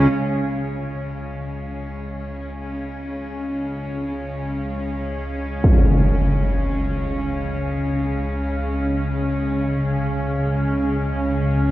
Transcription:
0.00 0.10 C#2 medium
0.00 0.11 C#3 medium
0.00 11.71 C#3 medium
0.00 11.71 G#3 medium
0.00 11.71 C#4 medium
0.12 11.71 C#2 medium
0.12 11.71 C#3 medium
5.64 impact medium

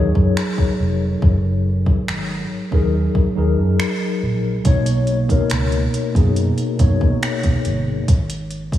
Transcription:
0.00 0.11 D#2 medium
0.00 2.71 F#3 medium
0.00 2.72 D#4 medium
0.00 2.73 G#4 medium
0.00 4.66 A4 medium
0.00 2.74 A#4 medium
0.00 4.67 C#5 medium
0.15 0.32 F#2 medium
0.15 kick medium
0.37 finger snap loud
0.58 kick medium
0.80 1.14 F1 medium
1.22 1.90 F#1 loud
1.22 kick loud
1.86 kick medium
2.08 2.42 G#1 medium
2.08 finger snap loud
2.71 3.06 D#2 medium
2.71 3.30 F#3 medium
2.71 3.30 D#4 medium
2.71 3.31 G#4 medium
2.71 3.31 A#4 loud
2.71 kick medium
3.15 kick medium
3.35 3.54 D#2 medium
3.35 4.52 F#3 medium
3.35 4.53 D#4 medium
3.35 4.53 G#4 medium
3.35 4.54 A#4 medium
3.59 3.75 F#2 medium
3.80 finger snap loud
4.23 4.57 A#1 medium
4.64 5.33 B1 loud
4.64 5.23 B2 loud
4.64 5.23 A#3 medium
4.64 5.24 D#4 medium
4.64 5.24 C#5 loud
4.64 kick loud
4.64 closed hi-hat medium
4.86 closed hi-hat medium
5.07 closed hi-hat medium
5.28 6.06 B2 medium
5.28 6.07 A#3 medium
5.28 6.07 D#4 medium
5.28 6.08 A#4 loud
5.28 kick medium
5.28 closed hi-hat soft
5.50 5.85 C#2 medium
5.50 finger snap loud
5.50 closed hi-hat medium
5.72 closed hi-hat soft
5.94 closed hi-hat medium
6.14 6.49 F#2 medium
6.14 6.73 B2 medium
6.14 6.73 A#3 medium
6.14 6.74 D#4 medium
6.14 6.74 G#4 medium
6.14 kick medium
6.14 closed hi-hat soft
6.36 closed hi-hat medium
6.58 closed hi-hat soft
6.78 6.97 F#2 medium
6.78 8.07 B2 medium
6.78 8.08 A#3 medium
6.78 8.08 D#4 medium
6.78 8.09 C#5 medium
6.78 kick medium
6.78 closed hi-hat medium
7.01 7.18 B2 medium
7.01 kick medium
7.23 finger snap loud
7.23 closed hi-hat medium
7.43 kick medium
7.43 closed hi-hat soft
7.65 7.99 G1 medium
7.65 closed hi-hat medium
8.08 8.76 G#1 loud
8.08 kick loud
8.08 closed hi-hat medium
8.30 closed hi-hat medium
8.51 closed hi-hat medium
8.72 kick medium
8.72 closed hi-hat soft

